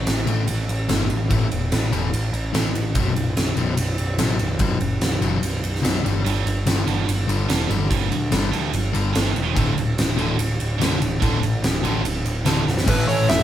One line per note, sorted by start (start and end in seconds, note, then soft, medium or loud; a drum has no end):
0.07 0.26 A1 medium
0.07 snare loud
0.07 ride medium
0.26 0.47 A1 medium
0.26 0.43 A2 medium
0.26 0.43 E3 medium
0.26 0.44 A3 medium
0.26 ride medium
0.48 0.68 A1 medium
0.48 ride medium
0.69 0.88 A1 medium
0.69 ride medium
0.88 1.09 G1 medium
0.88 1.05 A2 medium
0.88 1.05 E3 medium
0.88 1.06 A3 loud
0.88 snare loud
0.88 ride medium
1.10 1.29 A1 medium
1.10 ride medium
1.29 1.50 A1 medium
1.29 1.46 A2 medium
1.29 1.47 E3 loud
1.29 1.47 A3 loud
1.29 kick loud
1.29 ride medium
1.52 1.71 E1 medium
1.52 ride medium
1.72 1.91 A1 medium
1.72 snare loud
1.72 ride medium
1.92 2.12 E1 medium
1.92 2.08 A2 medium
1.92 2.09 E3 medium
1.92 2.09 A3 medium
1.92 ride medium
2.12 2.32 A1 medium
2.12 ride medium
2.32 2.52 A1 medium
2.32 ride medium
2.53 2.73 A1 medium
2.53 2.70 A2 medium
2.53 2.70 E3 loud
2.53 2.71 A3 medium
2.53 snare loud
2.53 ride medium
2.75 2.94 A1 medium
2.75 ride medium
2.95 3.15 B0 medium
2.95 3.12 B1 medium
2.95 3.12 F#2 loud
2.95 3.12 B2 loud
2.95 kick medium
2.95 ride medium
3.16 3.35 B0 medium
3.16 ride medium
3.37 3.55 B0 medium
3.37 snare loud
3.37 ride medium
3.56 3.76 B0 medium
3.56 3.74 B1 medium
3.56 3.74 F#2 medium
3.56 3.74 B2 loud
3.56 ride medium
3.77 3.97 B0 medium
3.77 ride loud
3.98 4.18 B0 medium
3.98 ride medium
4.18 4.38 A1 medium
4.18 4.35 B1 medium
4.18 4.35 F#2 medium
4.18 4.36 B2 loud
4.18 snare loud
4.18 ride medium
4.39 4.59 B0 medium
4.39 ride medium
4.59 4.79 B0 medium
4.59 4.76 B1 medium
4.59 4.77 F#2 medium
4.59 4.77 B2 loud
4.59 kick loud
4.59 ride medium
4.81 5.00 F#1 medium
4.81 ride medium
5.01 5.21 B0 medium
5.01 snare loud
5.01 ride medium
5.21 5.41 F#1 medium
5.21 5.38 B1 medium
5.21 5.39 F#2 medium
5.21 5.39 B2 medium
5.21 ride medium
5.42 5.62 B0 medium
5.42 ride medium
5.62 5.82 B0 medium
5.62 ride medium
5.75 snare soft
5.82 6.03 B0 medium
5.82 6.00 B1 medium
5.82 6.00 F#2 loud
5.82 6.00 B2 loud
5.82 snare loud
5.82 ride medium
6.03 6.24 G1 medium
6.03 6.21 G2 medium
6.03 6.21 D3 medium
6.03 6.21 G3 medium
6.03 ride medium
6.25 6.45 G1 medium
6.25 6.42 G2 medium
6.25 6.42 D3 medium
6.25 6.42 G3 medium
6.25 ride medium
6.45 6.65 G1 medium
6.45 ride medium
6.66 6.86 G1 medium
6.66 6.83 G2 medium
6.66 6.83 D3 medium
6.66 6.83 G3 medium
6.66 snare loud
6.66 ride medium
6.86 7.06 G1 medium
6.86 7.04 G2 medium
6.86 7.04 D3 medium
6.86 7.05 G3 medium
6.86 ride medium
7.08 7.27 G1 medium
7.08 ride medium
7.28 7.48 G1 medium
7.28 7.45 G2 medium
7.28 7.45 D3 medium
7.28 7.46 G3 medium
7.28 ride medium
7.49 7.69 E1 medium
7.49 7.66 G2 medium
7.49 7.66 D3 loud
7.49 7.66 G3 loud
7.49 snare loud
7.49 ride medium
7.69 7.89 G1 medium
7.69 7.86 G2 medium
7.69 7.86 D3 loud
7.69 7.87 G3 loud
7.69 ride medium
7.91 8.10 G1 medium
7.91 8.07 G2 medium
7.91 8.07 D3 medium
7.91 8.08 G3 loud
7.91 kick medium
7.91 ride medium
8.10 8.30 D2 medium
8.10 ride medium
8.31 8.51 G1 medium
8.31 8.48 G2 medium
8.31 8.49 D3 medium
8.31 8.49 G3 loud
8.31 snare loud
8.31 ride medium
8.52 8.72 D2 medium
8.52 8.69 G2 medium
8.52 8.69 D3 medium
8.52 8.70 G3 medium
8.52 ride medium
8.73 8.93 G1 medium
8.73 ride medium
8.93 9.14 G1 medium
8.93 9.10 G2 medium
8.93 9.10 D3 loud
8.93 9.11 G3 medium
8.93 ride medium
9.13 9.34 G1 medium
9.13 9.31 G2 loud
9.13 9.31 D3 medium
9.13 9.31 G3 medium
9.13 snare loud
9.13 ride medium
9.36 9.55 E1 medium
9.36 ride medium
9.55 9.76 D1 medium
9.55 9.72 D2 medium
9.55 9.72 A2 loud
9.55 9.72 D3 loud
9.55 kick loud
9.55 ride medium
9.77 9.97 D1 medium
9.77 ride medium
9.98 10.18 D1 medium
9.98 snare loud
9.98 ride medium
10.17 10.39 D1 medium
10.17 10.34 D2 medium
10.17 10.34 A2 medium
10.17 10.35 D3 medium
10.17 ride medium
10.39 10.59 D1 medium
10.39 ride medium
10.60 10.79 D1 medium
10.60 ride medium
10.80 11.00 B0 medium
10.80 10.97 D2 medium
10.80 10.97 A2 loud
10.80 10.97 D3 loud
10.80 snare loud
10.80 ride medium
11.02 11.21 D1 medium
11.02 ride medium
11.22 11.41 D1 medium
11.22 11.38 D2 medium
11.22 11.39 A2 medium
11.22 11.39 D3 loud
11.22 kick loud
11.22 ride medium
11.43 11.62 A1 medium
11.43 ride medium
11.63 11.83 D1 medium
11.63 snare loud
11.63 ride medium
11.83 12.03 A1 medium
11.83 12.00 D2 medium
11.83 12.01 A2 medium
11.83 12.01 D3 medium
11.83 ride medium
12.04 12.24 D1 medium
12.04 ride medium
12.25 12.44 D1 medium
12.25 ride medium
12.45 12.65 D1 medium
12.45 12.62 D2 medium
12.45 12.63 A2 loud
12.45 12.63 D3 loud
12.45 snare loud
12.45 ride medium
12.66 12.86 B0 medium
12.66 snare medium
12.77 snare medium
12.86 13.07 A1 medium
12.86 13.43 A2 medium
12.86 13.43 E3 loud
12.86 13.43 A3 loud
12.86 13.43 C#4 loud
12.86 13.43 E4 loud
12.86 13.43 A4 loud
12.86 13.08 B4 medium
12.86 kick loud
12.86 crash loud
13.08 13.27 A1 medium
13.08 13.27 C#5 loud
13.08 open hi-hat medium
13.29 13.43 E1 medium
13.29 13.43 E5 loud
13.29 snare loud
13.29 open hi-hat medium